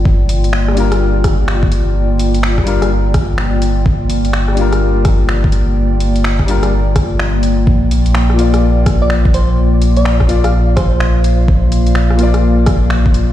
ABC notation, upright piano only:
X:1
M:4/4
L:1/8
Q:"Swing 16ths" 1/4=126
K:Gm
V:1 name="Upright piano"
z3 [G,DFB]4- [G,DFB]- | [G,DFB]3 [G,DFB] z4 | z3 [G,DFB]4- [G,DFB]- | [G,DFB]3 [G,DFB] z4 |
z3 [B,,B,Fd]4- [B,,B,Fd]- | [B,,B,Fd]3 [B,,B,Fd] z4 | z3 [B,,B,Fd]4- [B,,B,Fd] |]